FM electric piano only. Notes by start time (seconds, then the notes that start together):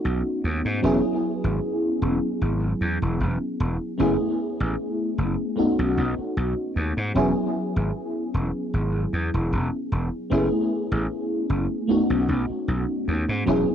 Already playing: A3 B3 C#4 D#4 F#4
0.82 F#3 B3 C#4 E4 G#4
3.98 A3 B3 C#4 E4 G#4
5.56 A3 B3 C#4 D#4 F#4
7.14 F#3 B3 C#4 E4 G#4
10.30 A3 B3 C#4 E4 G#4
11.88 A3 B3 C#4 D#4 F#4
13.46 F#3 B3 C#4 E4 G#4